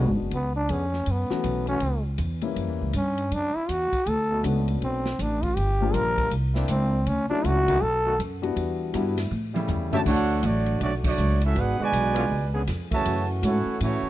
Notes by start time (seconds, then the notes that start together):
Already playing: D3 F#3 G#3 B3 D4 F#4
0.07 G#1
0.20 F#1
0.31 C#2 B3, kick, ride
0.56 D4
0.69 F2 D3 B3 C#4 G#4, kick, hi-hat pedal, ride
0.93 snare
1.06 F#2, kick, ride
1.11 B3
1.30 E3 F#3 A3 C#4 F#4, muted upright bass stroke, snare
1.44 B1, kick, hi-hat pedal, ride
1.67 E3 A3 C#4 F#4, ride
1.80 C#2, kick, ride
2.18 E2, kick, hi-hat pedal, ride
2.41 E3 G3 A#3 C#4 E4, ride
2.56 F#2, kick, ride
2.68 E2
2.81 C#2
2.93 G2 C#4, kick, hi-hat pedal, ride
3.18 ride
3.31 F#2 D4, kick, ride
3.55 E4, muted upright bass stroke
3.69 E2 F#4, kick, hi-hat pedal, ride
3.92 muted upright bass stroke, kick, ride
4.06 D2 A4, kick, ride
4.31 B2 A3 B3 F#4
4.44 C#2 A3 B3 C#4 D4 F#4, kick, hi-hat pedal, ride
4.68 ride
4.81 B1 C4, kick, ride
5.05 snare
5.19 A1 D4, kick, hi-hat pedal, ride
5.43 F4, kick, ride
5.56 G1 G4, ride
5.81 F3 G3 A#3 D4 F4
5.93 A#1 D3 G3 F4 A#4, kick, hi-hat pedal, ride
6.18 kick, ride
6.31 C2, kick, ride
6.54 A#3 C4 D4 E4, snare
6.68 C#2 C4, kick, hi-hat pedal, ride
7.06 D2 C#4, kick, ride
7.30 F#3 A3 C#4 D4 E4, muted upright bass stroke
7.44 C#2 F#4, kick, hi-hat pedal, ride
7.68 D#3 A3 B3 F#4, kick, ride
7.82 B1 A4, kick
8.05 D#3 A3 B3 F#4
8.19 F#2, kick, hi-hat pedal, ride
8.42 G3 B3 D4 E4 F#4, ride
8.56 E2, kick, ride
8.93 G2 D3 G3 B3 D4 E4 F#4, kick, hi-hat pedal, ride
9.18 snare, ride
9.31 A2, high tom
9.54 C#3 G3 A3 E4, high tom
9.68 E2, floor tom, hi-hat pedal
9.92 C#3 E3 A3 C#4 D4 E4 F#4 G4 C#5 E5 A5, floor tom
10.06 D2 D3 A3 D4 F#4 A4 C#5 F#5, kick, crash
10.43 A1 F#3 A3 D4 F#4 C#5 D5, kick, hi-hat pedal, ride
10.66 ride
10.81 B1 F#3 A3 C#4 D4 F#4 D5, kick, ride
11.04 F#3 A3 D4 F#4 C#5 D5, kick, crash
11.17 C#2, hi-hat pedal
11.41 C#4 E4 F#4, ride
11.45 A4 E5
11.55 G#1 B3 D4 F#4 G#4 B4 F#5, kick, ride
11.79 B2 D3 G#3 F#4 B4 D5 G#5, muted upright bass stroke
11.93 B1, kick, hi-hat pedal, ride
12.14 D3 B3 C#4 F4, ride
12.30 C#2, kick
12.53 D3 B3 C#4 G#4
12.67 F2, kick, snare, hi-hat pedal, ride
12.91 C#3 E3 A3 F#4 C#5 E5 A5, kick, ride
13.05 F#2 E3 A3 C#4 F#4, kick, ride
13.43 G#2 A3 C#4 E4 F#4 A4 C#5 F#5, kick, hi-hat pedal, ride
13.65 muted upright bass stroke
13.80 A2 E3 A3 C#4 E4 F#4 C#5, kick, ride
14.02 muted upright bass stroke